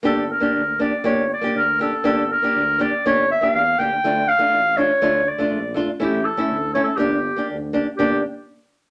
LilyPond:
<<
  \new Staff \with { instrumentName = "Clarinet" } { \time 2/4 \tempo 4 = 121 a'8 bes'4 d''8 | cis''8 d''8 bes'8 a'8 | a'8 bes'4 d''8 | cis''8 e''16 f''8. g''8~ |
g''8 f''4 cis''8~ | cis''8 d''4 r8 | g'8 a'4 cis''16 a'16 | g'4 r4 |
g'8 r4. | }
  \new Staff \with { instrumentName = "Nylon-string guitar" } { \time 2/4 <bes d' g'>8 r16 <bes d' g'>16 r8 <bes d' g'>16 r16 | <bes d' g'>8 r16 <bes d' g'>16 r8 <bes d' g'>16 r16 | <bes d' g'>8 r16 <bes d' g'>16 r8 <bes d' g'>16 r16 | <bes d' g'>8 r16 <bes d' g'>16 r8 <bes d' g'>16 r16 |
<a d' f'>8 r16 <a d' f'>16 r8 <a d' f'>16 r16 | <a d' f'>8 r16 <a d' f'>16 r8 <a d' f'>16 r16 | <a cis' e'>8 r16 <a cis' e'>16 r8 <a cis' e'>16 r16 | <bes d' g'>8 r16 <bes d' g'>16 r8 <bes d' g'>16 r16 |
<bes d' g'>8 r4. | }
  \new Staff \with { instrumentName = "Tuba" } { \clef bass \time 2/4 g,,4 d,4 | g,,4 d,4 | g,,4 d,4 | g,,4 e,8 d,8 |
d,4 a,,4 | d,4 bes,,4 | a,,4 d,4 | g,,4 d,4 |
g,,8 r4. | }
>>